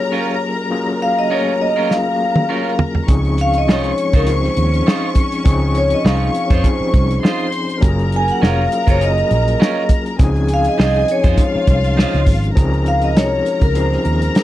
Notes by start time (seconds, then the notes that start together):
Already playing: F#3 A#3 C#4 F4 G4 G#4 A#4 C#5 A#5
0.12 C#4 F4 A#4
0.70 F#3 A#3 C#4 F4 G#4
1.02 F5
1.19 D#5
1.30 F#3 A3 C#4 F4 G#4 A#4 C#5
1.37 A#3
1.61 D#5
1.76 C#4 F4 A#4
1.89 F#3 A#3 C#4 F4 G#4 F5, snare
2.36 high tom
2.49 C#4 F4 A#4
2.79 floor tom
2.95 floor tom
3.07 C#2 F3 C4 C#4 D#4 G#4 C#6, kick, closed hi-hat
3.25 closed hi-hat
3.38 F5, closed hi-hat
3.53 closed hi-hat
3.58 D#5
3.67 C2 F3 G#3 C#4 D#4 F4 G#4 C5 C#5, snare
3.84 closed hi-hat
3.98 closed hi-hat
4.13 C#2 D#4 F4 A#4 C5, kick, closed hi-hat
4.26 F3 C4 C#4 D#4 G#4 C5, closed hi-hat
4.44 snare
4.57 D#2, closed hi-hat
4.74 closed hi-hat
4.87 D#4 F4 C5, snare
5.15 kick, closed hi-hat
5.32 closed hi-hat
5.44 C#2 F3 C4 C#4 D#4 G#4, kick, closed hi-hat
5.75 C#5, closed hi-hat
5.90 D#5, closed hi-hat
6.03 C2 F3 C4 C#4 D#4 F4 G#4 C5 F5, snare
6.35 closed hi-hat
6.45 C#5
6.50 F2 D#4 F4 C5, kick, closed hi-hat
6.63 F3 C4 C#4 D#4 G#4, kick, closed hi-hat
6.80 muted fingered electric bass stroke
6.94 C2, kick, closed hi-hat
7.11 closed hi-hat
7.23 D#4 F4 C5 C6, snare
7.39 closed hi-hat
7.52 closed hi-hat
7.69 closed hi-hat
7.81 F#1 F#3 A#3 C#4 F4 G4 A#4 A#5, kick, closed hi-hat
7.89 G#4
7.99 closed hi-hat
8.12 G#5, closed hi-hat
8.28 F#5, closed hi-hat
8.40 F1 F#3 A#3 C#4 F4 G#4 A#4, snare
8.45 F5
8.72 closed hi-hat
8.86 F#1 C#4 F4 A#4 C5, kick, closed hi-hat
8.90 C#5
9.00 F#3 A#3 C#4 F4 G#4 D#5, closed hi-hat
9.18 closed hi-hat
9.31 A#1, closed hi-hat
9.48 closed hi-hat
9.60 C#4 F4 A#4, snare
9.89 kick, closed hi-hat
10.06 closed hi-hat
10.18 C#2 F3 C4 C#4 D#4 G#4 G#5, kick, closed hi-hat
10.36 closed hi-hat
10.49 closed hi-hat
10.54 F5
10.64 closed hi-hat
10.68 D#5
10.77 C2 F3 C4 C#4 D#4 F4 G#4 C5, snare
10.82 D#5
10.95 closed hi-hat
11.08 C#5, closed hi-hat
11.24 F2 D#4 F4 C5, kick, closed hi-hat
11.36 F3 G#3 C#4 D#4 F4 G#4 F5, kick, closed hi-hat
11.55 muted fingered electric bass stroke
11.67 C2, kick, closed hi-hat
11.84 closed hi-hat
11.97 D#4 F4 C5, snare
12.14 C#2, snare, closed hi-hat
12.26 G#1, kick, open hi-hat
12.44 closed hi-hat
12.55 C#2 F3 C4 C#4 D#4 G#4 A#4 A#5, kick, closed hi-hat
12.74 closed hi-hat
12.86 F5, closed hi-hat
13.02 D#5, closed hi-hat
13.15 C2 F3 G#3 C#4 D#4 F#4 C#5, snare, closed hi-hat
13.23 G#4
13.46 closed hi-hat
13.61 C#2 A#4, kick, closed hi-hat
13.75 F3 C4 C#4 D#4 G#4 C5, closed hi-hat
13.92 snare
14.05 D#2, closed hi-hat
14.22 closed hi-hat
14.35 snare, closed hi-hat